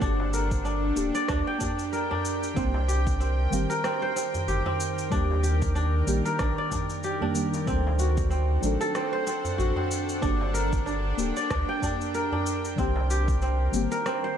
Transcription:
Already playing: C4 D4 F#4
0.00 G1 A#3 D4 G4 A#4 G5, kick, shaker
0.20 darbuka tek
0.33 A#4, shaker
0.51 kick, shaker
0.65 D4, shaker
0.95 D1 A#3 D4 G4, shaker
1.15 D5, darbuka ka, shaker
1.28 D2 D4, kick, cross-stick, darbuka tek, shaker
1.47 G5
1.58 A#3 D4 G4, kick, shaker
1.62 darbuka dum
1.79 darbuka ka, shaker
1.93 A#4, shaker
2.11 D4, darbuka dum
2.25 shaker
2.43 shaker
2.54 C2 D#3 G3 A#3 C4 C5, kick, shaker
2.58 G4
2.74 darbuka tek
2.88 G4, shaker
3.07 kick, shaker
3.20 C4, shaker
3.50 G1 D#3 G3 A#3 C4 G4, shaker
3.70 A#4, darbuka ka, shaker
3.84 C4, cross-stick, shaker
4.02 C5
4.16 C4, shaker
4.34 darbuka ka, darbuka dum, shaker
4.48 G1 G4, shaker
4.66 C4, darbuka tek, darbuka dum
4.80 shaker
4.98 shaker
5.09 D#2 D#3 G3 A#3 D4 G4 D5, kick, shaker
5.30 darbuka tek
5.43 G4, shaker
5.62 kick, shaker
5.75 D4, shaker
6.06 A#1 D#3 G3 A#3 D4 G4, shaker
6.25 A#4, darbuka ka, shaker
6.39 A#1 D4, kick, cross-stick, darbuka tek, shaker
6.58 D5
6.71 D4, kick, darbuka tek, darbuka dum, shaker
6.90 darbuka ka, shaker
7.03 G4, shaker
7.20 D#3 G3 A#3 D4 G4, darbuka dum
7.34 D#3 G3 A#3 D4 G4, shaker
7.54 darbuka tek, shaker
7.66 D2 F#3 A3 C4 D4 A4 C5 F#5, kick, shaker
7.87 darbuka tek
7.99 F#4, shaker
8.17 kick, shaker
8.30 C4, shaker
8.62 A1 F#3 A3 C4 D4 A4, shaker
8.81 A4, darbuka ka, shaker
8.95 C4, cross-stick, shaker
9.13 C5
9.27 C4, shaker
9.44 darbuka ka, darbuka dum, shaker
9.58 A1 F#4, shaker
9.76 C4, darbuka tek, darbuka dum
9.91 shaker
10.09 shaker
10.21 G1 A#3 D4 G4 A#4 G5, kick, shaker
10.41 darbuka tek
10.54 A#4, shaker
10.73 kick, shaker
10.86 D4, shaker
11.17 D1 A#3 D4 G4, shaker
11.37 D5, darbuka ka, shaker
11.50 D2 D4, kick, cross-stick, darbuka tek, shaker
11.69 G5
11.80 A#3 D4 G4, kick, darbuka dum, shaker
12.00 darbuka ka, shaker
12.15 A#4, shaker
12.32 D4, darbuka dum
12.46 shaker
12.65 shaker
12.76 C2 D#3 G3 A#3 C4 C5 G5, kick, shaker
12.80 G4
12.96 darbuka tek
13.10 G4, shaker
13.28 kick, shaker
13.42 C4, shaker
13.71 G1 D#3 G3 A#3 C4, shaker
13.76 G4
13.92 A#4, darbuka ka, shaker
14.06 C4, cross-stick, shaker
14.24 C5

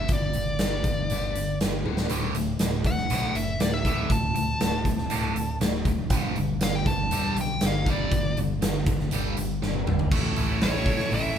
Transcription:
Already playing: E5
0.08 G1 G2 D3, kick, closed hi-hat
0.13 D5
0.33 G1 G2 D3, closed hi-hat
0.59 G1 G2 D3, snare, closed hi-hat
0.84 G1 G2 D3, kick, closed hi-hat
1.10 G1 G2 D3 G3, closed hi-hat
1.35 G1 G2 D3, closed hi-hat
1.60 G1 G2 D3, snare, closed hi-hat
1.85 D1 D2 A2 D3, high tom
1.97 snare
2.09 D1 D2 A2 D3, closed hi-hat
2.34 D1 D2 A2, closed hi-hat
2.59 D1 D2 A2, snare, closed hi-hat
2.84 D1 D2 A2 F#5, kick, closed hi-hat
2.98 snare
3.10 B1 D2 A2 D3, closed hi-hat
3.35 F#1 D2 A2 E5, closed hi-hat
3.60 D1 D2 A2 D5, snare, closed hi-hat
3.74 E5
3.85 D2 A2 D3, kick, closed hi-hat
4.10 D1 D2 A2 A5, kick, closed hi-hat
4.35 D1 D2 A2, closed hi-hat
4.60 D1 D2 A2, snare, closed hi-hat
4.85 D1 D2 A2, kick, closed hi-hat
4.99 snare
5.10 D1 D2 A2 D3, closed hi-hat
5.35 D1 D2 A2, closed hi-hat
5.60 D1 D2 A2, snare, closed hi-hat
5.85 D1 D2 A2, kick, closed hi-hat
6.10 G1 G2 D3 G3, kick, closed hi-hat
6.36 G1 G2 D3, closed hi-hat
6.60 G1 G2 D3, snare, closed hi-hat
6.64 F5
6.75 G5
6.86 G1 G2 D3 A5, kick, closed hi-hat
7.10 E1 G2 D3 G3, closed hi-hat
7.36 B1 G2 D3, closed hi-hat
7.41 G5
7.61 G1 G2 D3, snare, closed hi-hat
7.66 F5
7.86 G2 D3 G3, kick, closed hi-hat
7.91 D5
8.11 G1 G2 D3, kick, closed hi-hat
8.37 G1 G2 D3, closed hi-hat
8.61 G1 G2 D3, snare, closed hi-hat
8.86 G1 G2 D3, kick, closed hi-hat
9.00 snare
9.11 G1 G2 D3 G3, closed hi-hat
9.37 G1 G2 D3, closed hi-hat
9.62 G1 G2 D3, snare
9.74 high tom
9.86 G1 G2 D3, mid tom
9.99 floor tom
10.11 A1 A2 E3 A3 C#4 E4 A4, kick, crash
10.36 A1 A3 C#4 E4 A4, open hi-hat
10.61 A1 A3 C#4 E4 A4 C#5, snare, open hi-hat
10.86 A3 C#4 E4 A4, kick, open hi-hat
11.00 snare
11.11 A1 E5, open hi-hat

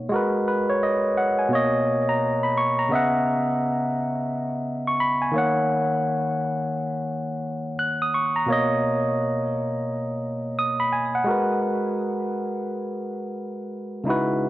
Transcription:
0.09 G#3 F#4
0.14 A#4 B4
0.48 B4
0.70 C#5
0.83 D#5
1.17 F#5
1.39 G#5
1.49 B2 A#3
1.53 C#5 D#5
2.09 A#5
2.43 B5
2.57 C#6
2.79 A#5
2.89 C#3 B3 D#5
2.93 E5 F#5
4.87 C#6
5.00 B5
5.22 G#5
5.32 D#3 A#3
5.36 C#5 F#5
7.79 F#6
8.02 D#6
8.14 C#6
8.36 A#5
8.46 B2 A#3 C#5
8.52 D#5
10.59 D#6
10.80 B5
10.93 G#5
11.15 F#5
11.24 G#3 F#4 A#4
11.31 B4
14.04 C#3 G#3 D#4 E4
14.09 F#4 B4

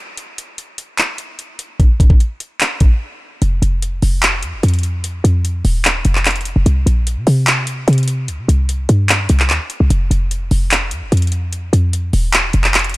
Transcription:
0.17 closed hi-hat
0.38 closed hi-hat
0.58 closed hi-hat
0.78 closed hi-hat
0.98 clap, closed hi-hat
1.18 closed hi-hat
1.39 closed hi-hat
1.59 closed hi-hat
1.80 kick, closed hi-hat
2.00 kick, closed hi-hat
2.10 kick
2.20 closed hi-hat
2.40 closed hi-hat
2.60 clap, closed hi-hat
2.80 kick, closed hi-hat
3.42 F1, closed hi-hat
3.62 F1, closed hi-hat
3.82 closed hi-hat
4.02 F1, open hi-hat
4.22 clap, closed hi-hat
4.43 F2, closed hi-hat
4.53 F1
4.63 F2, closed hi-hat
4.68 closed hi-hat
4.74 closed hi-hat
4.79 closed hi-hat
4.83 closed hi-hat
5.04 closed hi-hat
5.24 F2, closed hi-hat
5.45 closed hi-hat
5.65 D#1, open hi-hat
5.84 clap, closed hi-hat
6.05 F1, closed hi-hat
6.15 clap
6.25 clap, closed hi-hat
6.31 closed hi-hat
6.36 closed hi-hat
6.41 closed hi-hat
6.45 closed hi-hat
6.56 F1
6.66 C2, closed hi-hat
6.86 A#1, closed hi-hat
7.07 closed hi-hat
7.17 C3
7.27 C3, open hi-hat
7.47 clap, closed hi-hat
7.67 closed hi-hat
7.88 C3, closed hi-hat
7.93 closed hi-hat
7.98 closed hi-hat
8.03 closed hi-hat
8.08 closed hi-hat
8.28 C#2, closed hi-hat
8.38 C3
8.48 C2, closed hi-hat
8.69 closed hi-hat
8.89 G2, closed hi-hat
9.09 clap, closed hi-hat
9.29 C2, closed hi-hat
9.40 clap
9.50 D#2, clap, closed hi-hat
9.70 closed hi-hat
9.80 C2
9.90 F1, closed hi-hat
10.11 F1, closed hi-hat
10.31 closed hi-hat
10.51 F1, open hi-hat
10.71 clap, closed hi-hat
10.91 F2, closed hi-hat
11.02 F1
11.12 F2, closed hi-hat
11.17 closed hi-hat
11.22 closed hi-hat
11.27 closed hi-hat
11.32 closed hi-hat
11.53 closed hi-hat
11.73 F2, closed hi-hat
11.93 closed hi-hat
12.13 D#1, open hi-hat
12.33 clap, closed hi-hat
12.53 F1, closed hi-hat
12.64 clap
12.74 clap, closed hi-hat
12.79 closed hi-hat
12.84 closed hi-hat
12.89 closed hi-hat

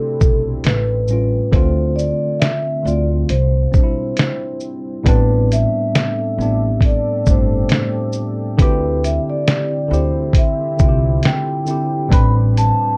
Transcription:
Already playing: A3 C4 D4 E4 F#4 G4 A4
0.20 B1 A4, kick, shaker
0.64 A1 B4, snare, closed hi-hat
1.08 A2 G3 C#4, shaker
1.13 F4
1.51 D2 D3 A3 C4 F4 C5, kick, closed hi-hat
1.56 F4
1.96 D5, shaker
2.40 E5, snare, closed hi-hat
2.83 D2 D3 A3 C4 D5, shaker
2.88 F4
3.29 C2 G3 C4 E4 C5, closed hi-hat
3.72 B1 G3 C4, kick, shaker
3.77 D4
3.83 E4
4.17 snare, closed hi-hat
4.60 shaker
5.04 A1 A2 G3 A3 B3 G4 A4 B4 D5 E5, kick, closed hi-hat
5.08 C4 D4
5.52 E5, closed hi-hat, shaker
5.95 snare, closed hi-hat
6.37 A1 A2 G3 B3 C4, shaker
6.42 D4
6.81 kick, closed hi-hat
6.85 D5
7.26 G1 A2 G3 A3 C4 C5, kick, shaker
7.31 D4
7.69 snare, closed hi-hat
8.12 shaker
8.57 D2 D3 C4 E4 B4, kick, closed hi-hat
8.62 G4
9.04 E5, closed hi-hat, shaker
9.30 D5
9.48 snare, closed hi-hat
9.88 D2 D3 C4 E4
9.93 G4 C5, shaker
10.33 kick, closed hi-hat
10.38 E5
10.77 C2 D3 C4 E4, kick, shaker
10.82 F4
10.89 G4
11.23 G5, snare, closed hi-hat
11.65 D3 C4 E4, shaker
11.71 G4
12.08 A1 A2 G3 A3 C4 D4 B4 D5, kick
12.12 B4 B5, closed hi-hat
12.57 A5, closed hi-hat, shaker

